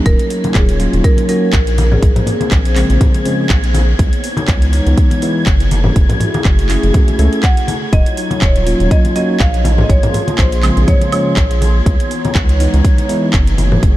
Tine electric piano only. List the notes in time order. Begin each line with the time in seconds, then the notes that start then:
Already playing: F#3 A#3 C#4 D#4
0.80 F#3 A#3 C#4 F4
1.29 F#3 A#3 C#4 F#4
2.76 C#3 F3 G#3 C4
3.26 C#3 F3 G#3 C#4
4.73 E3 G#3 B3 D#4
5.22 E3 G#3 B3 E4
6.70 A3 C#4 E4 G#4
7.19 A3 C#4 E4 A4
8.67 F#3 A#3 C#4 F4
9.16 F#3 A#3 C#4 F#4
10.63 C#3 F3 G#3 C4
11.13 C#3 F3 G#3 C#4
12.60 E3 G#3 B3 D#4
13.09 E3 G#3 B3 E4